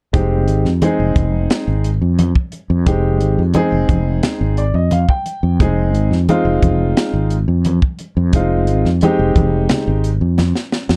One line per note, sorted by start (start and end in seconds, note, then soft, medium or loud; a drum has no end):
0.13 0.48 F1 loud
0.13 0.66 G#3 medium
0.13 0.66 C4 medium
0.13 0.67 D#4 medium
0.13 0.67 G4 medium
0.13 kick loud
0.13 closed hi-hat medium
0.13 muted conga soft
0.48 0.63 G#1 medium
0.48 closed hi-hat medium
0.48 muted conga soft
0.65 0.80 F2 medium
0.65 snare soft
0.82 1.87 G#3 medium
0.82 1.88 C4 medium
0.82 1.88 D#4 medium
0.82 1.88 G#4 medium
0.82 muted fretless electric bass stroke soft
0.82 closed hi-hat medium
0.82 high conga medium
1.00 1.15 F1 medium
1.16 1.47 F1 medium
1.16 kick medium
1.16 closed hi-hat medium
1.16 high conga medium
1.50 snare loud
1.50 closed hi-hat medium
1.50 muted conga soft
1.68 1.98 G#1 medium
1.84 closed hi-hat medium
2.01 2.32 F2 medium
2.19 closed hi-hat medium
2.19 high conga medium
2.35 kick medium
2.52 closed hi-hat medium
2.52 muted conga soft
2.70 2.85 F2 medium
2.86 3.22 F1 loud
2.86 3.40 G#3 medium
2.86 3.39 C4 medium
2.86 3.40 D#4 medium
2.86 3.40 G4 medium
2.86 kick medium
2.86 closed hi-hat medium
2.86 muted conga soft
3.20 3.37 G#1 medium
3.20 closed hi-hat medium
3.20 muted conga soft
3.39 3.54 F2 medium
3.54 4.60 G#3 medium
3.54 4.61 C4 medium
3.54 4.61 D#4 medium
3.54 4.61 G#4 loud
3.54 muted fretless electric bass stroke soft
3.54 closed hi-hat medium
3.54 high conga loud
3.72 3.88 F1 medium
3.89 4.20 F1 medium
3.89 kick medium
3.89 closed hi-hat medium
3.89 high conga medium
4.23 snare loud
4.23 closed hi-hat medium
4.23 muted conga soft
4.23 low conga medium
4.41 4.71 G#1 medium
4.57 4.74 D5 medium
4.57 closed hi-hat medium
4.74 5.05 F2 medium
4.74 4.91 D#5 medium
4.91 5.08 F5 medium
4.91 closed hi-hat medium
4.91 high conga medium
5.09 5.57 G5 medium
5.09 kick medium
5.26 closed hi-hat medium
5.26 muted conga soft
5.43 5.58 F2 medium
5.60 5.94 F1 medium
5.60 6.13 G#3 medium
5.60 6.14 C4 medium
5.60 6.14 D#4 medium
5.60 6.14 G#4 medium
5.60 kick medium
5.60 closed hi-hat medium
5.60 muted conga soft
5.94 6.09 G#1 medium
5.94 closed hi-hat medium
5.94 muted conga soft
6.11 6.26 F2 medium
6.11 snare soft
6.28 7.34 G#3 medium
6.28 7.34 C4 medium
6.28 7.35 D#4 medium
6.28 7.35 F4 loud
6.28 muted fretless electric bass stroke soft
6.28 closed hi-hat medium
6.28 high conga medium
6.45 6.61 F1 medium
6.62 6.93 F1 medium
6.62 kick medium
6.62 closed hi-hat medium
6.62 high conga medium
6.97 snare loud
6.97 closed hi-hat medium
6.97 muted conga soft
7.14 7.44 G#1 medium
7.30 closed hi-hat medium
7.48 7.79 F2 medium
7.65 closed hi-hat medium
7.65 high conga medium
7.82 kick medium
7.99 closed hi-hat medium
7.99 muted conga soft
8.17 8.32 F2 medium
8.33 8.68 F1 medium
8.33 8.87 G#3 medium
8.33 8.87 C4 medium
8.33 8.87 D#4 medium
8.33 8.87 F4 medium
8.33 kick loud
8.33 closed hi-hat medium
8.33 muted conga soft
8.67 8.83 G#1 medium
8.67 closed hi-hat medium
8.67 muted conga soft
8.85 9.00 F2 medium
8.85 snare soft
9.01 10.08 G#3 loud
9.01 10.08 C4 medium
9.01 10.08 D#4 medium
9.01 10.08 G4 medium
9.01 muted fretless electric bass stroke soft
9.01 closed hi-hat medium
9.01 high conga loud
9.19 9.34 F1 medium
9.35 9.66 F1 medium
9.35 kick medium
9.35 closed hi-hat medium
9.35 high conga medium
9.69 snare loud
9.69 closed hi-hat medium
9.69 muted conga soft
9.69 low conga medium
9.88 10.18 G#1 medium
10.04 closed hi-hat medium
10.21 10.52 F2 medium
10.38 snare medium
10.38 high conga medium
10.55 snare medium
10.72 snare medium
10.72 muted conga soft
10.89 10.96 F2 medium
10.89 snare medium